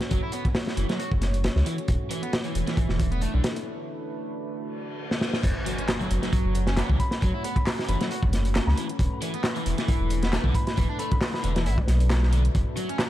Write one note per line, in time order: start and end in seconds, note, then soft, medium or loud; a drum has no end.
0.00 1.84 A3 medium
0.00 1.85 C#4 medium
0.00 1.85 F#4 medium
0.00 1.85 C#5 medium
0.00 snare soft
0.00 closed hi-hat soft
0.10 0.19 F#1 loud
0.10 0.20 F#3 medium
0.10 kick loud
0.10 closed hi-hat medium
0.10 closed hi-hat soft
0.23 0.31 E4 medium
0.32 0.44 B3 medium
0.32 closed hi-hat medium
0.45 kick loud
0.45 closed hi-hat soft
0.55 snare loud
0.55 closed hi-hat soft
0.55 open hi-hat medium
0.67 snare medium
0.77 0.85 F#1 medium
0.77 0.87 E3 medium
0.77 closed hi-hat medium
0.89 0.97 F#3 medium
0.89 snare medium
0.89 closed hi-hat soft
0.99 1.09 F#4 medium
0.99 closed hi-hat soft
0.99 closed hi-hat medium
1.11 1.49 F#1 medium
1.11 kick medium
1.22 snare soft
1.22 closed hi-hat medium
1.34 closed hi-hat soft
1.44 snare loud
1.44 closed hi-hat medium
1.44 closed hi-hat soft
1.56 1.62 C#2 loud
1.56 snare soft
1.66 1.76 E3 medium
1.66 closed hi-hat medium
1.78 closed hi-hat soft
1.88 1.96 E1 loud
1.88 5.41 A3 medium
1.88 5.41 D4 medium
1.88 3.65 E4 medium
1.88 5.41 B4 medium
1.88 kick loud
1.88 closed hi-hat medium
1.88 closed hi-hat soft
2.11 2.22 E3 loud
2.11 closed hi-hat medium
2.23 2.32 B3 medium
2.23 closed hi-hat soft
2.33 snare loud
2.33 closed hi-hat soft
2.33 closed hi-hat medium
2.44 2.66 E3 medium
2.44 closed hi-hat soft
2.55 2.63 E1 medium
2.55 closed hi-hat medium
2.67 3.10 E3 medium
2.67 snare soft
2.67 closed hi-hat soft
2.77 2.87 E1 soft
2.77 kick loud
2.77 closed hi-hat medium
2.77 closed hi-hat soft
2.89 3.27 E1 medium
2.89 snare soft
3.00 kick loud
3.00 closed hi-hat medium
3.12 3.21 B3 medium
3.12 closed hi-hat soft
3.21 3.33 A3 medium
3.21 closed hi-hat medium
3.21 closed hi-hat soft
3.34 3.40 B1 loud
3.34 3.42 D3 medium
3.44 snare loud
3.44 closed hi-hat medium
3.56 closed hi-hat soft
3.66 5.42 F#4 medium
4.55 reverse cymbal medium
5.11 snare soft
5.21 snare medium
5.33 snare medium
5.43 5.51 F#1 loud
5.43 13.10 A3 medium
5.43 8.96 C#4 medium
5.43 8.96 F#4 medium
5.43 7.20 C#5 medium
5.43 kick loud
5.43 closed hi-hat soft
5.43 closed hi-hat medium
5.43 crash medium
5.43 impact medium
5.66 5.77 F#3 loud
5.66 closed hi-hat medium
5.78 5.88 C#4 medium
5.78 closed hi-hat soft
5.88 snare loud
5.88 clap loud
5.88 closed hi-hat medium
5.88 closed hi-hat soft
6.01 6.22 F#3 medium
6.01 closed hi-hat soft
6.11 6.18 F#1 medium
6.11 closed hi-hat medium
6.23 6.66 F#3 medium
6.23 snare soft
6.23 closed hi-hat soft
6.33 6.43 F#1 soft
6.33 kick loud
6.33 closed hi-hat medium
6.33 closed hi-hat soft
6.45 6.82 F#1 medium
6.55 closed hi-hat medium
6.67 6.77 C#4 medium
6.67 snare soft
6.67 closed hi-hat soft
6.77 6.89 B3 medium
6.77 snare loud
6.77 clap loud
6.77 closed hi-hat medium
6.77 closed hi-hat soft
6.89 6.96 C#2 loud
6.89 6.97 E3 medium
6.89 kick medium
7.00 7.07 B5 medium
7.00 kick medium
7.00 closed hi-hat medium
7.11 7.18 B5 medium
7.11 snare soft
7.11 closed hi-hat soft
7.21 7.30 F#1 loud
7.21 7.31 F#3 loud
7.21 12.51 B4 medium
7.21 kick loud
7.21 closed hi-hat soft
7.21 closed hi-hat medium
7.34 7.42 E4 medium
7.44 7.56 B3 medium
7.44 7.52 B5 medium
7.44 closed hi-hat medium
7.56 7.63 B5 medium
7.56 kick loud
7.56 closed hi-hat soft
7.67 snare loud
7.67 clap loud
7.67 closed hi-hat soft
7.67 open hi-hat medium
7.79 snare medium
7.89 7.96 F#1 medium
7.89 7.98 E3 medium
7.89 8.07 B5 medium
7.89 closed hi-hat medium
8.01 8.09 F#3 medium
8.01 snare medium
8.01 closed hi-hat soft
8.11 8.20 F#4 medium
8.11 closed hi-hat soft
8.11 closed hi-hat medium
8.23 8.60 F#1 medium
8.23 kick loud
8.33 snare soft
8.33 closed hi-hat medium
8.45 closed hi-hat soft
8.55 snare loud
8.55 clap loud
8.55 closed hi-hat medium
8.55 closed hi-hat soft
8.67 8.74 C#2 loud
8.67 9.04 B5 medium
8.67 snare soft
8.78 8.87 E3 medium
8.78 closed hi-hat medium
8.89 closed hi-hat soft
8.99 9.07 E1 loud
8.99 12.52 D4 medium
8.99 10.76 E4 medium
8.99 kick loud
8.99 closed hi-hat soft
8.99 closed hi-hat medium
9.22 9.33 E3 loud
9.22 closed hi-hat medium
9.34 9.44 B3 medium
9.34 closed hi-hat soft
9.44 snare loud
9.44 clap loud
9.44 closed hi-hat soft
9.44 closed hi-hat medium
9.56 9.77 E3 medium
9.56 closed hi-hat soft
9.66 9.74 E1 medium
9.66 closed hi-hat medium
9.78 10.22 E3 medium
9.78 snare soft
9.78 closed hi-hat soft
9.88 9.98 E1 soft
9.88 kick loud
9.88 closed hi-hat soft
9.88 closed hi-hat medium
10.01 10.38 E1 medium
10.10 closed hi-hat medium
10.23 10.32 B3 medium
10.23 snare soft
10.23 closed hi-hat soft
10.33 10.44 A3 medium
10.33 snare loud
10.33 clap loud
10.33 closed hi-hat soft
10.33 closed hi-hat medium
10.44 10.51 B1 loud
10.44 10.53 D3 medium
10.44 kick loud
10.55 10.63 B5 medium
10.55 kick loud
10.55 closed hi-hat medium
10.67 10.74 B5 medium
10.67 snare soft
10.67 closed hi-hat soft
10.77 10.85 E1 loud
10.77 10.87 E3 loud
10.77 13.10 F#4 medium
10.77 kick loud
10.77 closed hi-hat soft
10.77 closed hi-hat medium
10.90 10.97 D4 medium
10.99 11.11 A3 medium
10.99 11.07 B5 medium
10.99 closed hi-hat medium
11.11 11.18 B5 medium
11.11 kick medium
11.11 closed hi-hat soft
11.21 snare loud
11.21 clap loud
11.21 closed hi-hat soft
11.21 open hi-hat medium
11.34 11.66 B5 medium
11.34 snare soft
11.44 11.68 E1 medium
11.44 11.54 D3 medium
11.44 closed hi-hat medium
11.56 11.64 E3 medium
11.56 snare medium
11.56 closed hi-hat soft
11.66 11.81 A1 loud
11.66 11.76 E4 medium
11.66 closed hi-hat soft
11.66 closed hi-hat medium
11.78 kick loud
11.88 12.49 B1 loud
11.88 snare soft
11.88 closed hi-hat medium
12.00 closed hi-hat soft
12.10 snare loud
12.10 clap loud
12.10 closed hi-hat medium
12.10 closed hi-hat soft
12.23 snare soft
12.33 12.42 D3 medium
12.33 closed hi-hat medium
12.45 closed hi-hat soft
12.55 12.63 F#1 loud
12.55 13.10 C#4 medium
12.55 13.10 C#5 medium
12.55 kick loud
12.55 closed hi-hat medium
12.55 closed hi-hat soft
12.76 12.88 F#3 loud
12.76 closed hi-hat medium
12.89 12.99 C#4 medium
12.89 closed hi-hat soft
12.99 snare loud
12.99 clap loud
12.99 closed hi-hat soft
12.99 closed hi-hat medium